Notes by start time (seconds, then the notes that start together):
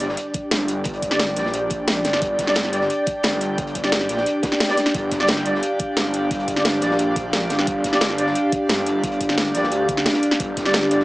Already playing: G1 D4 G4 D5, sub drop
0.00 G3 D4 D5, closed hi-hat
0.09 D5, snare
0.17 closed hi-hat
0.34 kick, closed hi-hat
0.51 G1 G5, snare, closed hi-hat
0.68 closed hi-hat
0.84 kick, closed hi-hat
0.94 closed hi-hat
1.02 kick, closed hi-hat
1.11 G3 D4 D5, snare
1.19 snare, closed hi-hat
1.28 closed hi-hat
1.36 A#1 G3 D4 D5, snare, closed hi-hat
1.46 snare
1.53 A#1, closed hi-hat
1.70 kick, closed hi-hat
1.87 snare, closed hi-hat
2.04 G1, snare, closed hi-hat
2.13 snare
2.22 G1, kick, closed hi-hat
2.39 G1, kick, snare, closed hi-hat
2.47 G3 D4 D5, snare
2.55 snare, closed hi-hat
2.64 snare
2.73 G3 D4 D5, closed hi-hat
2.81 snare
2.90 closed hi-hat
3.06 kick, closed hi-hat
3.23 G1, snare, closed hi-hat
3.41 closed hi-hat
3.58 kick, closed hi-hat
3.67 closed hi-hat
3.75 kick, closed hi-hat
3.84 G3 D4 D5, snare
3.92 snare, closed hi-hat
4.01 snare, closed hi-hat
4.09 A#1, snare, closed hi-hat
4.17 snare
4.26 closed hi-hat
4.43 kick, snare, closed hi-hat
4.52 snare
4.60 snare, closed hi-hat
4.69 G3 D4 D5, snare, closed hi-hat
4.77 snare, closed hi-hat
4.86 snare, closed hi-hat
4.94 G1 F5, kick, closed hi-hat
5.11 G1, kick, snare, closed hi-hat
5.20 G3 D4 D5, snare
5.27 snare, closed hi-hat
5.37 snare
5.45 G3 D4 D5, closed hi-hat
5.55 snare
5.63 closed hi-hat
5.79 kick, closed hi-hat
5.97 G1, snare, closed hi-hat
6.14 closed hi-hat
6.31 kick, closed hi-hat
6.40 closed hi-hat
6.48 kick, closed hi-hat
6.56 G3 D4 D5, snare
6.65 snare, closed hi-hat
6.73 closed hi-hat
6.81 A#1 G3 D4 D5, snare, closed hi-hat
6.91 snare
6.99 A#1, closed hi-hat
7.16 kick, closed hi-hat
7.33 snare, closed hi-hat
7.50 G1, snare, closed hi-hat
7.59 snare
7.67 G1, kick, closed hi-hat
7.84 G1, kick, snare, closed hi-hat
7.93 G3 D4 D5, snare
8.01 snare, closed hi-hat
8.10 snare
8.18 G3 D4 D5, closed hi-hat
8.26 snare
8.35 closed hi-hat
8.52 kick, closed hi-hat
8.69 G1, snare, closed hi-hat
8.86 closed hi-hat
9.04 kick, closed hi-hat
9.12 closed hi-hat
9.21 kick, closed hi-hat
9.29 snare
9.37 snare, closed hi-hat
9.46 closed hi-hat
9.54 A#1 G3 D4 D5, snare, closed hi-hat
9.63 snare
9.71 D2, closed hi-hat
9.83 F5
9.88 kick, closed hi-hat
9.97 snare
10.05 snare, closed hi-hat
10.14 snare, closed hi-hat
10.23 closed hi-hat
10.31 snare
10.40 G1 D5, kick, closed hi-hat
10.57 G1, kick, snare, closed hi-hat
10.65 G3 D4 D5, snare
10.73 snare, closed hi-hat
10.82 snare
10.91 G3 D4 D5, closed hi-hat
11.00 snare